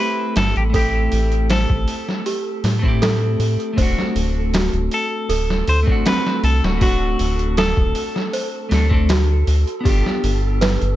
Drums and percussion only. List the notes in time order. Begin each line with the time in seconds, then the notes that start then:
0.36 snare, open hi-hat
0.56 closed hi-hat
0.74 kick, open hi-hat
1.12 open hi-hat
1.32 closed hi-hat
1.50 snare, open hi-hat
1.70 kick
1.88 open hi-hat
2.09 snare
2.26 open hi-hat
2.64 snare, open hi-hat
2.84 kick
3.02 snare, open hi-hat
3.40 open hi-hat
3.60 closed hi-hat
3.78 kick, open hi-hat
3.99 snare
4.16 open hi-hat
4.54 snare, open hi-hat
4.73 closed hi-hat
4.91 open hi-hat
5.30 open hi-hat
5.50 snare
5.68 open hi-hat
5.87 kick
6.06 snare, open hi-hat
6.27 snare
6.44 open hi-hat
6.64 snare
6.81 kick, open hi-hat
7.19 open hi-hat
7.39 closed hi-hat
7.57 snare, open hi-hat
7.77 kick
7.95 open hi-hat
8.16 snare
8.33 open hi-hat
8.71 snare, open hi-hat
8.91 kick
9.09 snare, open hi-hat
9.47 open hi-hat
9.67 closed hi-hat
9.85 kick, open hi-hat
10.06 snare
10.24 open hi-hat
10.61 snare, open hi-hat
10.82 closed hi-hat